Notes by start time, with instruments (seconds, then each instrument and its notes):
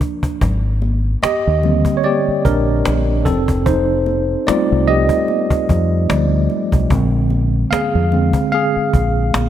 Already playing: tine electric piano F3 A#3 D4 A#4
0.01 cajon bass
0.23 cajon bass
0.41 fingered electric bass G#1, cajon bass, muted conga, low conga
0.82 cajon slap, high conga
1.04 cajon slap
1.22 tine electric piano G4 D#5, muted fingered electric bass stroke, cajon slap, high conga
1.47 fingered electric bass D#2
1.63 tine electric piano D3 G3 A#3 C4, cajon slap, muted conga, high conga, low conga
1.85 cajon bass
1.97 tine electric piano C#5
2.04 tine electric piano G4 D5, cajon slap, high conga
2.28 muted fingered electric bass stroke
2.45 fingered electric bass A#1, tine electric piano D4 A#4, cajon bass, muted conga
2.68 cajon slap
2.85 fingered electric bass A#1, cajon slap, muted conga, high conga
3.25 fingered electric bass F1, tine electric piano C4 A4, cajon bass, muted conga, low conga
3.48 cajon bass
3.66 tine electric piano D#4 C5, cajon bass, low conga
4.06 cajon slap, muted conga, high conga
4.29 cajon slap
4.47 tine electric piano G3 A3 C4 D#4 F4 D5, muted fingered electric bass stroke, cajon slap, muted conga, high conga
4.72 fingered electric bass C2
4.87 tine electric piano G4 D#5, cajon slap, high conga, low conga
5.09 cajon bass
5.28 cajon slap, high conga
5.50 muted fingered electric bass stroke, cajon bass
5.69 fingered electric bass F2, cajon bass
5.92 cajon slap
6.09 fingered electric bass D2, tine electric piano F3 G3 A3 D5, cajon slap, high conga
6.50 cajon slap, muted conga, low conga
6.72 fingered electric bass B1, cajon bass
6.90 fingered electric bass A#1, tine electric piano D3 G#3 C4, cajon bass, muted conga, low conga
7.30 cajon slap, high conga
7.53 cajon slap
7.71 tine electric piano G#4 F5, muted fingered electric bass stroke, cajon slap, high conga
7.95 fingered electric bass F2
8.12 tine electric piano D3 G#3 C4, cajon slap, high conga, low conga
8.33 cajon bass
8.52 tine electric piano G#4 F5, cajon slap, muted conga, high conga
8.77 muted fingered electric bass stroke
8.93 fingered electric bass A#1, cajon bass
9.17 cajon slap
9.34 fingered electric bass A#1, cajon slap, high conga